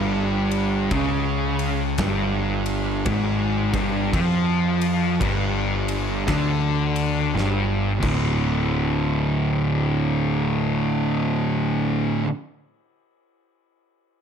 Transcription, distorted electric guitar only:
0.00 0.90 G2 loud
0.92 1.98 C#3 loud
2.00 3.05 G2 loud
3.06 3.72 G#2 loud
3.74 4.12 G2 loud
4.14 5.20 F3 loud
5.20 6.27 G2 loud
6.27 7.34 D3 loud
7.35 8.00 G2 loud
8.00 12.23 D2 loud
8.00 12.26 A2 loud
8.04 12.27 D3 loud

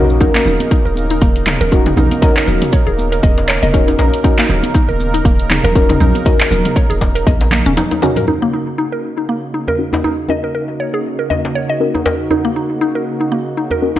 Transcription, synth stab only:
0.00 0.18 C#4 medium
0.00 0.18 D#4 medium
0.00 0.18 F#4 medium
0.00 0.18 A#4 loud
0.21 1.69 C#4 loud
0.21 1.69 D#4 medium
0.21 1.70 F#4 medium
0.21 1.70 A#4 loud
1.72 2.20 C#4 loud
1.72 2.20 D#4 medium
1.72 2.20 F#4 medium
1.72 2.20 A#4 loud
2.22 3.71 C#4 loud
2.22 3.71 D#4 medium
2.22 3.71 F#4 medium
2.22 3.71 A#4 loud
3.74 4.22 C#4 loud
3.74 4.22 D#4 medium
3.74 4.22 F#4 medium
3.74 4.22 A#4 loud
4.24 5.73 C#4 loud
4.24 5.73 D#4 medium
4.24 5.73 F#4 medium
4.24 5.73 A#4 loud
5.75 6.23 C#4 loud
5.75 6.23 D#4 medium
5.75 6.23 F#4 medium
5.75 6.23 A#4 loud
6.26 7.75 C#4 loud
6.26 7.75 D#4 medium
6.26 7.75 F#4 medium
6.26 7.75 A#4 loud
8.02 8.25 C#4 loud
8.02 8.25 D#4 medium
8.02 8.25 F#4 medium
8.02 8.25 A#4 loud
8.27 9.76 C#4 medium
8.27 9.76 D#4 medium
8.27 9.76 F#4 medium
8.27 9.76 A#4 loud
9.79 10.27 C#4 medium
9.79 10.27 D#4 medium
9.79 10.27 F#4 medium
9.79 10.27 A#4 loud
10.29 11.78 C#4 loud
10.29 11.78 D#4 medium
10.29 11.78 F#4 medium
10.29 11.78 A#4 loud
11.80 12.28 C#4 medium
11.80 12.28 D#4 medium
11.80 12.28 F#4 medium
11.80 12.28 A#4 loud
12.31 13.80 C#4 medium
12.31 13.80 D#4 medium
12.31 13.80 F#4 medium
12.31 13.80 A#4 loud
13.82 13.99 C#4 medium
13.82 13.99 D#4 medium
13.82 13.99 F#4 medium
13.82 13.99 A#4 loud

